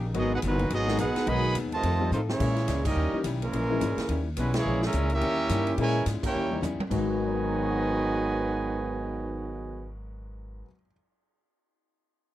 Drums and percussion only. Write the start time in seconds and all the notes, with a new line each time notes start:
0.14 ride
0.42 hi-hat pedal, ride
0.59 ride
0.70 ride
0.88 snare
0.98 hi-hat pedal, ride
1.16 snare, ride
1.27 ride
1.55 hi-hat pedal, ride
1.72 ride
1.83 ride
2.12 hi-hat pedal
2.29 snare
2.40 kick, crash
2.56 snare, ride
2.68 snare, hi-hat pedal, ride
2.85 kick, crash
3.24 hi-hat pedal, ride
3.42 ride
3.53 ride
3.81 hi-hat pedal, ride
3.98 snare, ride
4.09 ride
4.37 hi-hat pedal, ride
4.54 snare, ride
4.82 snare
4.93 hi-hat pedal, ride
5.10 ride
5.21 ride
5.49 hi-hat pedal, ride
5.67 ride
5.78 ride
6.06 snare, hi-hat pedal, ride
6.23 kick, crash
6.62 hi-hat pedal, high tom
6.80 high tom
6.91 kick, crash
7.08 cymbal swell